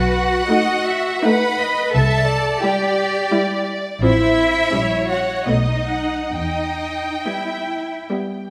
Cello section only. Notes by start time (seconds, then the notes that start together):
Already playing: F#4
1.24 B4
1.93 A4
2.60 G4
4.03 E4
5.10 F#4
5.48 D#4
6.35 D#4
7.24 E4